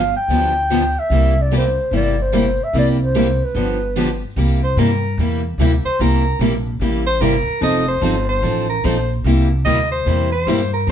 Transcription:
Already playing: G1 F5
0.16 G5
0.28 D2 D3 F3 B3 D4 G4
0.70 D3 F3 B3 D4 G4
0.99 E5
1.10 C2 C3 G3 A#3 E4 G4
1.42 D5
1.52 C3 G3 A#3 E4 G4
1.57 C5
1.91 G1 C3 G3 A#3 E4 G4
1.96 D5
2.22 C5
2.33 C3 G3 A#3 E4 G4
2.64 E5
2.73 C2 C3 G3 A#3 E4 G4
2.78 D5
3.03 C5
3.15 C3 G3 A#3 E4 G4
3.44 B4
3.54 G1 D3 F3 B3 D4 G4
3.97 D3 F3 B3 D4 G4
4.36 C2 C3 G3 A#3 E4 G4
4.64 C5
4.76 G2 C3 G3 A#3 E4 G4 A#4
5.18 E2 C3 G3 A#3 E4 G4
5.58 D2 C3 G3 A#3 E4 G4
5.85 C5, muted upright bass stroke
5.99 C2 C3 G3 A#3 E4 G4 A#4
6.39 A#1 C3 G3 A#3 E4 G4
6.79 A1 C3 G3 A#3 E4 G4
7.07 C5
7.20 G1 C3 G3 A#3 E4 G4 A#4
7.46 muted upright bass stroke
7.61 F1 F3 C4 D#4 A4 D#5
7.89 C5
8.01 G1 F3 C4 D#4 A4
8.29 C5
8.42 A1 F3 C4 D#4 A4
8.70 A#4
8.84 A#1 F3 C4 D#4 A4 C5
9.24 C2 C3 G3 A#3 E4 G4
9.65 D2 C3 G3 A#3 E4 G4 D#5
9.92 C5
10.06 E2 C3 G3 A#3 E4 G4
10.32 C5
10.47 G2 C3 G3 A#3 E4 G4
10.74 A#4
10.87 F2 F3 C4

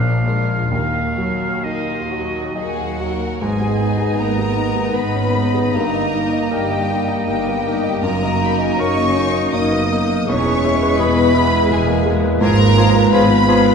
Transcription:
Already playing: A#1 A#2 A#3 D4 G#4 F5
0.25 G#3 D4 F4 A#4
0.70 D#2 D#3 D#4 F#4 F5
1.17 F#3 F#4 A#4
1.63 D#3 D#4 F#4 D#5
1.90 F4
2.09 F#3 F#4 A#4
2.54 D#3 F#3 F#4 G#4 D#5 F#5
2.99 F#3 F#4 A#4
3.41 G#1 G#2 G#3 B3 D#4 G#4 D#5 G#5
3.61 G#4
3.80 B3 D#4
3.97 G#4
4.17 G#1 G#2 A#3 A#4 B4 A#5
4.38 G#4
4.56 B3 D#4
4.76 G#4
4.94 G#1 G#2 B3 B4 B5
5.15 C#4
5.35 B3 D#4
5.54 G#4
5.74 G1 G2 A#3 D#4 A#4 A#5
5.94 D#5
6.13 A#3 D#4
6.33 D#5
6.51 G1 G2 G3 G4 A#4 G5
6.71 D#5
6.90 A#3 D#4
7.08 D#5
7.27 G1 G2 G3 A#3 G4 G5
7.47 B3
7.64 A#3 D#4
7.84 D#5
8.02 F#1 F#2 A#3 F#4 A#4 D#5 A#5
8.23 D#5
8.40 A#3 D#4
8.45 B5
8.54 A#5
8.58 D#5 G#5
8.72 A#5
8.78 F#1 F#2 C#4 A#4 C#5 C#6
8.97 D#5
9.15 A#3 D#4
9.33 D#5
9.53 F#1 F#2 A#3 D#4 D#5 D#6
9.72 B3
9.90 A#3 D#4
10.10 D#5
10.27 E1 E2 G#3 C#4 E4 G#4 B4 C#5 C#6
10.46 B4
10.63 G#3 E4 G#4
10.83 B4
10.99 E1 E2 B3 G#4 B4 B5
11.17 B4
11.34 G#3 E4 G#4
11.53 B4
11.70 E1 E2 G#3 G#4 G#5
11.87 A#3
12.06 G#3 G#4
12.24 B4
12.41 G#1 G#2 F3 A#3 F4 G#4 A#4 A#5
12.60 B4
12.77 F3 G#3 F4 G#4
12.97 B4
13.11 G#1 G#2 F3 B3 F4 G#4 B4 B5
13.30 B4
13.47 F3 G#3 F4 G#4
13.66 B4

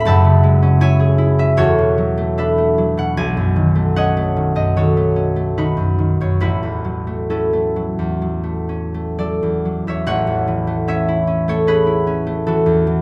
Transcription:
Already playing: D2 A2 A3 C4 E4 F4 A4 C5 D5 F5
0.00 B5
0.05 F#1 F#2 E5 F#5 A5
0.24 C#3
0.44 G#3
0.62 C#4
0.81 E4 C#5 E5 G#5
1.00 G#4
1.18 E4
1.39 C#4 E5
1.57 E2 F#4 A4 C#5
1.78 B2
1.98 F#3
2.17 A3
2.38 D4 A4 B4 E5
2.58 A3
2.78 F#3
2.97 B2 F#5
3.17 B1 G#5
3.37 F#2
3.56 D#3
3.75 A3
3.96 C#4 C#5 D#5 F#5
4.17 A3
4.36 D#3
4.55 F#2 D#5
4.76 D#3 F#4 A4 C#5
4.97 A3
5.16 C#4
5.36 A3
5.57 D#3 D#4 F#4 B4
5.77 F#2
5.98 D#3
6.21 F#2 C#5
6.40 A1 E4 F#4 B4
6.63 E2
6.84 F#3
7.07 A3
7.30 C#4 E4 F#4 A4
7.53 A3
7.76 F#3
7.99 E2
8.22 F#3
8.44 A3
8.69 C#4
8.94 A3
9.19 F#3 A4 D5
9.43 E2
9.65 F#3
9.87 E2 C#5 E5
10.06 A1 C#5 F#5
10.27 E2
10.48 E3
10.67 A3
10.88 C#4 C#5 E5
11.08 E4
11.27 C#4
11.48 A3 A4 C#5
11.67 C#4 G#4 B4
11.87 E4
12.07 C#4
12.27 A3
12.47 E3 F#4 A4
12.66 E2
12.87 E3

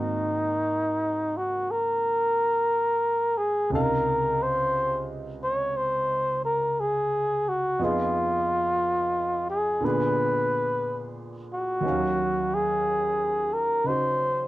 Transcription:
Already playing: G#2 D#3 A#3 C4 D#4 F#4
1.37 F#4
1.71 A#4
3.37 G#4
3.70 C#2 C3 C#3 D#4 A#4
3.75 F5
4.42 C5
5.44 C#5
5.77 C5
6.45 A#4
6.80 G#4
7.49 F#4
7.79 F2 F3 B3 D#4
7.84 F4 G#4
9.50 G#4
9.81 A#2 D3 B3
9.85 D4 G#4 B4
11.54 F#4
11.81 D#2 D#3
11.86 C#4 F5
11.92 F#3
12.55 G#4
13.54 A#4
13.84 C#3 D#4 C5
13.88 F#4

